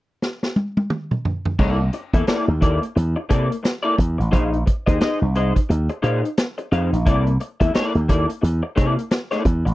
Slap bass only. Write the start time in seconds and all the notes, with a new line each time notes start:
1.59 C2
2.13 E2
2.28 muted slap bass stroke
2.48 D#2
2.96 E2
3.30 C3
3.98 E2
4.19 A1
4.33 A#1
4.87 D#2
5.02 muted slap bass stroke
5.22 C2
5.70 D#2
6.04 A#2
6.72 F2
6.93 A#1
7.07 C2
7.61 E2
7.75 muted slap bass stroke
7.95 D#2
8.43 E2
8.77 C3
9.45 E2
9.66 A1